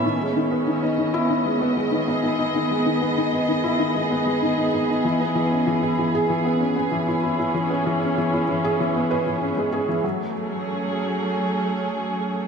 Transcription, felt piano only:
X:1
M:4/4
L:1/16
Q:1/4=96
K:E
V:1 name="Felt piano" clef=bass
D, G, D, B, D, D D, E D, G, B, G, D, D D D | D, G, D, B, D, D D, E D, G, B, G, D, D D D | E, B, E, C E, E E, G E, B, C B, E, E E E | E, B, E, C E, E E, G E, B, B E, C G, G E, |
F,2 z12 z2 |]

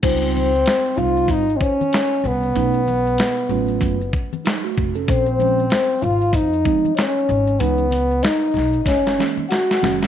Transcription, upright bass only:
X:1
M:4/4
L:1/8
Q:"Swing 16ths" 1/4=95
K:Dblyd
V:1 name="Upright bass" clef=bass
D,,2 z C,, A,,, z2 C,, | =B,,,2 z =A,,, ^F,,, z2 =F,,, | B,,,2 z A,,, F,, z2 A,,, | D,,2 z _C,, _G,,, z2 G,,, |]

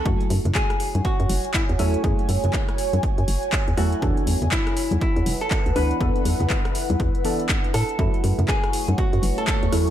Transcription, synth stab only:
X:1
M:4/4
L:1/8
Q:"Swing 16ths" 1/4=121
K:F#m
V:1 name="Synth stab"
[F,A,EF]6- [F,A,EF] [F,A,EA] | [F,A,EG]6- [F,A,EG] [F,A,EA] | [E,B,DA]6- [E,B,DA] [E,B,DB] | [E,B,DA]4- [E,B,DA] [E,B,DA]3 |
[F,A,EF]6- [F,A,EF] [F,A,EA] |]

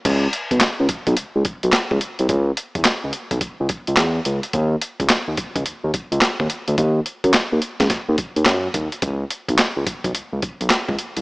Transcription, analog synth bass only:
X:1
M:4/4
L:1/16
Q:"Swing 16ths" 1/4=107
K:C#m
V:1 name="Analog synth bass" clef=bass
C,,2 z B,,, C,, C,, z B,,, C,, C,, z B,,, C,, C,, z ^B,,, | C,,2 z E,, C,, C,, z B,,, C,, C,, z C,, E,,2 C,, z | D,,2 z C,, D,, D,, z C,, D,, D,, z C,, D,, D,, z =D,, | D,,2 z F,, D,, D,, z C,, D,, D,, z D,, F,,2 D,, z |
C,,2 z B,,, C,, C,, z B,,, C,, C,, z B,,, C,, C,, z ^B,,, |]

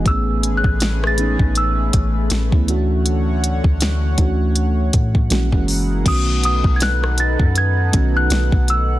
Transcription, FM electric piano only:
X:1
M:4/4
L:1/16
Q:"Swing 16ths" 1/4=80
K:Bmix
V:1 name="FM electric piano"
[E,A,B,CG]4 z2 [E,A,B,CD]4- [E,A,B,CD] z2 [E,A,B,CE] [E,A,C=DF]2- | [E,A,C=DF]4 z2 [E,A,CDF]4- [E,A,CDF] z [E,G,^A,CF] [E,G,A,CF]2 z | [D,A,B,CF]6 z4 [D,A,B,CF]4 z2 |]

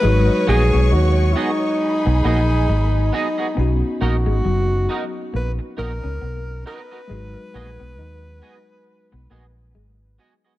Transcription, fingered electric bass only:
X:1
M:4/4
L:1/16
Q:"Swing 16ths" 1/4=68
K:G#m
V:1 name="Fingered electric bass" clef=bass
G,,, z A,,, B,,, D,,2 z3 B,,, A,,,2 G,,,2 z2 | B,,, z A,,, G,,, F,,,2 z2 A,,, z A,,, C,, B,,,2 z2 | G,,, z A,,, B,,, D,,2 z3 B,,, A,,,2 G,,,2 z2 |]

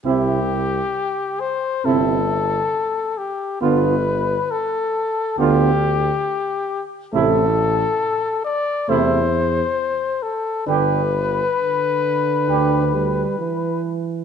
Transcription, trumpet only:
X:1
M:4/4
L:1/8
Q:1/4=68
K:C
V:1 name="Trumpet"
G3 c A3 G | B2 A2 G3 z | A3 d c3 A | B6- B z |]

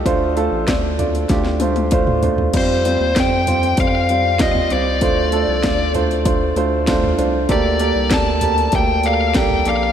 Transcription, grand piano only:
X:1
M:4/4
L:1/8
Q:1/4=97
K:Dphr
V:1 name="Grand piano"
[A,DFc] [A,DFA] [A,DFd] [A,DFd] [A,DFG] [A,DFc] [A,DFc] [A,DFc] | [G,CFc] [G,CFc] [G,CFc] [G,CFc] [G,CFc] [G,CFc] [G,CFe] [G,CFc] | [A,DFc] [A,DFA] [A,DFd] [A,DFc] [A,DFc] [A,DFc] [A,DFc] [A,DFc] | [B,GAd] [B,GAd] [B,GAd] [B,GAd] [B,GAd] [B,GAd] [B,GAd] [B,GAd] |]
V:2 name="Grand piano" clef=bass
D,3 z4 z | z8 | D,3 z4 z | D,3 z4 z |]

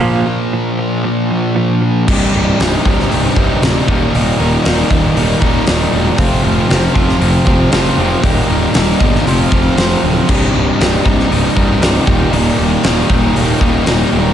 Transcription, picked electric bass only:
X:1
M:4/4
L:1/8
Q:1/4=117
K:Cm
V:1 name="Picked electric bass" clef=bass
z8 | C,,, C,,, C,,, C,,, C,,, C,,, D,,, E,,, | E,,, E,,, E,,, E,,, E,,, E,,, E,,, =E,,, | F,,, F,,, F,,, F,,, F,,, F,,, F,,, F,,, |
E,,, E,,, E,,, G,,, F,,, F,,, F,,, D,,, | C,,, C,,, C,,, C,,, C,,, C,,, C,,, E,,, | E,,, E,,, E,,, E,,, E,,, E,,, E,,, E,,, |]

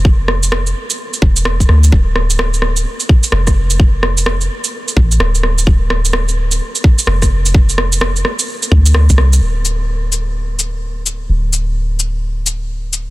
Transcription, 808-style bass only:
X:1
M:4/4
L:1/16
Q:"Swing 16ths" 1/4=128
K:Dm
V:1 name="808-style bass" clef=bass
F,,,6 z4 E,,,4 D,,2 | D,,,8 z4 F,,,4- | F,,,6 z4 A,,,2 D,,,4 | D,,,8 z4 F,,,4- |
F,,,6 z4 D,,3 C,,3 | D,,,16 | D,,,16 |]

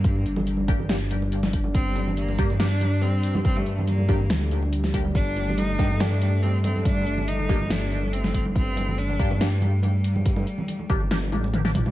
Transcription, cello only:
X:1
M:4/4
L:1/16
Q:1/4=141
K:Gm
V:1 name="Cello"
B,2 z12 z2 | C4 B,4 D4 C4 | C A,3 B,6 z6 | D4 E4 D4 C2 C2 |
D4 E4 D4 C2 C2 | C4 D4 G,8- | G,12 z4 |]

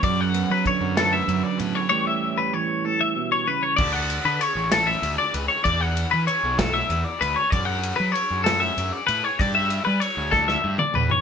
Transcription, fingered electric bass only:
X:1
M:6/8
L:1/16
Q:3/8=64
K:D
V:1 name="Fingered electric bass" clef=bass
F,,3 F, z F,,3 F,, z A,, z | z12 | D,,3 D, z A,,,3 D,, z C,, z | E,,3 E, z B,,,3 E,, z D,, z |
F,,3 F, z F,,3 F,, z A,, z | G,,3 G, z D,,3 G,, z E,, z |]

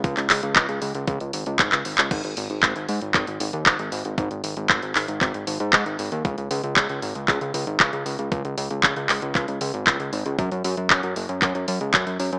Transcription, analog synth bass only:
X:1
M:4/4
L:1/16
Q:1/4=116
K:C#dor
V:1 name="Analog synth bass" clef=bass
C,, C,, C,, C,, C,, C,, C,, C,, C,, C,, G,,, C,, G,,, C,, G,,, C,, | G,,, G,,, G,,, G,,, G,,, G,,, G,, G,,, G,,, G,,, G,,, D,, G,,, G,,, G,,, G,,, | G,,, G,,, G,,, G,,, G,,, G,,, G,,, G,,, G,,, G,,, G,,, G,, G,, G,,, G,,, D,, | C,, C,, C,, C,, C,, C,, G,,, C,, C,, C,, C,, G,,, C,, C,, C,, C,, |
C,, C,, C,, C,, C,, C,, C,, C,, C,, C,, C,, G,,, C,, C,, G,,, C,, | F,, F,, F,, F,, F,, F,, F,,, F,, F,, F,, F,, C,, F,, F,, F,, F,, |]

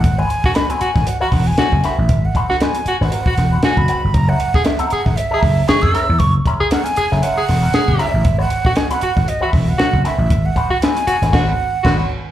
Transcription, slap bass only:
X:1
M:4/4
L:1/16
Q:"Swing 16ths" 1/4=117
K:Abdor
V:1 name="Slap bass" clef=bass
A,,,2 z4 z A,,, z2 _F,,,2 z G,,, z =A,,, | A,,,2 z4 z A,,, z2 _F,,,2 z G,,, z =G,,, | G,,,2 z4 z A,,, z2 G,,,2 z G,, z _F,, | G,,,2 z4 z G,,, z2 _F,,,2 z G,,, z =A,,, |
A,,,2 z4 z A,,, z2 _F,,,2 z G,,, z =A,,, | A,,,2 z4 z A,,, A,,,2 z2 A,,,2 z2 |]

